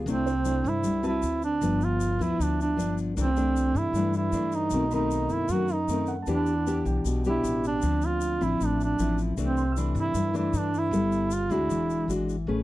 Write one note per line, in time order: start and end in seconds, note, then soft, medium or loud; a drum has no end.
0.06 0.61 C2 loud
0.06 0.83 C3 medium
0.06 0.32 A3 soft
0.06 0.70 C4 medium
0.06 0.33 D4 soft
0.06 0.33 E4 medium
0.06 shaker soft
0.26 1.39 C5 medium
0.26 shaker soft
0.45 1.00 A3 medium
0.45 1.01 D4 soft
0.45 1.01 E4 medium
0.45 shaker medium
0.64 0.83 G2 loud
0.64 1.05 E4 medium
0.64 shaker soft
0.84 1.20 C2 medium
0.84 1.21 G3 medium
0.84 shaker medium
1.03 1.59 C4 medium
1.03 1.59 F#4 medium
1.03 1.59 B4 medium
1.03 1.40 A5 soft
1.03 shaker soft
1.07 1.42 E4 medium
1.22 1.59 D2 medium
1.22 shaker medium
1.42 1.86 D4 medium
1.42 shaker soft
1.62 2.16 G1 loud
1.62 2.38 G2 soft
1.62 2.17 F3 soft
1.62 2.18 B3 medium
1.62 shaker medium
1.81 2.24 F4 medium
1.81 shaker soft
2.00 shaker medium
2.19 2.38 D2 medium
2.19 2.75 F3 medium
2.19 2.76 B3 medium
2.19 2.76 E4 medium
2.19 2.44 E4 medium
2.19 shaker soft
2.39 2.76 D2 medium
2.39 2.76 D3 medium
2.39 2.60 D4 medium
2.39 shaker medium
2.61 2.96 D4 medium
2.61 shaker soft
2.76 3.14 G1 medium
2.76 3.15 F3 medium
2.76 3.15 B3 medium
2.76 3.15 D4 medium
2.76 shaker medium
2.98 shaker soft
3.17 3.71 C2 loud
3.17 3.93 C3 medium
3.17 3.29 E3 medium
3.17 3.29 A3 medium
3.17 3.29 D4 medium
3.17 shaker medium
3.21 3.79 C4 medium
3.37 3.92 E3 medium
3.37 3.92 A3 medium
3.37 3.92 D4 medium
3.37 shaker soft
3.56 shaker medium
3.75 3.92 G2 medium
3.75 4.15 E4 medium
3.75 shaker soft
3.93 4.30 G2 medium
3.93 4.71 G2 medium
3.93 4.30 E3 medium
3.93 4.31 A3 medium
3.93 4.31 D4 medium
3.93 shaker medium
4.13 4.57 E4 medium
4.13 shaker soft
4.32 4.69 G2 medium
4.32 4.71 E3 soft
4.32 4.71 A3 medium
4.32 4.71 D4 medium
4.32 shaker medium
4.52 4.93 D#4 loud
4.52 shaker soft
4.70 5.26 B1 loud
4.70 5.48 B2 medium
4.70 4.84 D#3 soft
4.70 4.84 A3 medium
4.70 4.84 C4 medium
4.70 shaker medium
4.91 5.47 D#3 medium
4.91 5.47 A3 medium
4.91 5.48 C4 medium
4.91 5.34 D#4 medium
4.91 6.29 B5 soft
4.91 shaker soft
5.11 shaker medium
5.29 5.48 F#2 medium
5.29 5.53 E4 medium
5.29 shaker soft
5.48 5.85 F#2 medium
5.48 6.26 F#2 medium
5.48 5.75 D#3 medium
5.48 5.76 A3 soft
5.48 5.76 C4 medium
5.48 5.75 F#4 medium
5.48 shaker medium
5.68 shaker soft
5.73 6.10 D#4 medium
5.88 6.24 F#2 medium
5.88 6.15 D#3 medium
5.88 6.15 A3 medium
5.88 6.15 C4 medium
5.88 shaker medium
6.07 6.44 F#5 soft
6.07 shaker soft
6.22 6.56 A5 soft
6.27 6.81 E2 loud
6.27 7.03 E3 medium
6.27 6.52 B3 medium
6.27 6.52 D4 medium
6.27 6.53 G4 medium
6.27 shaker medium
6.32 6.84 D4 medium
6.37 6.68 B5 soft
6.46 shaker soft
6.67 7.21 B3 medium
6.67 7.22 D4 soft
6.67 7.22 G4 medium
6.67 shaker medium
6.85 7.03 B1 medium
6.85 7.98 G5 soft
6.85 shaker soft
7.04 7.41 B1 medium
7.04 7.81 B2 medium
7.04 shaker medium
7.24 7.80 B3 medium
7.24 7.80 D4 medium
7.24 7.80 G4 medium
7.24 shaker soft
7.29 7.63 E4 medium
7.44 7.80 A1 medium
7.44 shaker medium
7.64 8.07 D4 loud
7.64 shaker soft
7.82 8.37 D2 medium
7.82 8.58 D3 medium
7.82 8.38 F3 medium
7.82 8.38 C4 medium
7.82 shaker medium
8.02 shaker soft
8.06 8.47 F4 medium
8.21 shaker medium
8.41 8.59 A1 medium
8.41 8.96 F3 medium
8.41 8.96 C4 medium
8.41 8.96 E4 medium
8.41 9.53 B5 medium
8.41 shaker soft
8.45 8.67 E4 medium
8.60 8.96 A1 medium
8.60 9.36 A2 medium
8.60 shaker medium
8.65 8.82 D4 medium
8.80 9.18 D4 medium
8.80 shaker soft
8.99 9.35 A1 medium
8.99 9.36 F3 medium
8.99 9.37 C4 medium
8.99 9.36 E4 medium
8.99 shaker medium
9.18 shaker soft
9.37 9.92 C2 loud
9.37 10.13 C3 medium
9.37 9.62 E3 soft
9.37 9.63 A3 medium
9.37 9.63 D4 medium
9.37 shaker medium
9.42 9.76 C4 medium
9.57 10.95 C6 soft
9.57 shaker soft
9.72 11.07 E6 soft
9.77 10.32 E3 medium
9.77 10.32 A3 medium
9.77 10.32 D4 medium
9.77 11.09 B5 soft
9.77 shaker medium
9.95 10.13 G2 loud
9.95 shaker soft
9.99 10.34 E4 loud
10.14 10.51 G2 medium
10.14 10.91 G2 medium
10.14 shaker medium
10.34 10.89 E3 medium
10.34 10.89 A3 medium
10.34 10.90 D4 medium
10.34 10.59 E4 medium
10.34 shaker soft
10.53 10.90 G2 medium
10.53 shaker medium
10.58 10.79 D4 loud
10.74 11.35 E4 loud
10.74 shaker soft
10.91 11.46 G1 loud
10.91 11.50 G3 medium
10.91 11.31 B3 medium
10.91 11.31 A4 medium
10.91 shaker medium
11.12 shaker soft
11.31 11.54 F4 medium
11.31 shaker medium
11.50 11.68 D2 medium
11.50 12.06 G#3 medium
11.50 12.06 D4 medium
11.50 12.10 E4 medium
11.50 12.06 F#4 medium
11.50 shaker soft
11.69 12.06 E1 medium
11.69 12.45 E3 medium
11.69 shaker medium
11.90 shaker soft
12.08 12.44 G#1 medium
12.08 12.35 G#3 soft
12.08 12.35 D4 medium
12.08 12.35 F#4 medium
12.08 shaker medium
12.29 shaker soft
12.47 12.63 A1 medium
12.47 12.63 A3 medium
12.47 12.59 C#4 medium
12.47 12.59 G#4 medium
12.47 12.60 B4 medium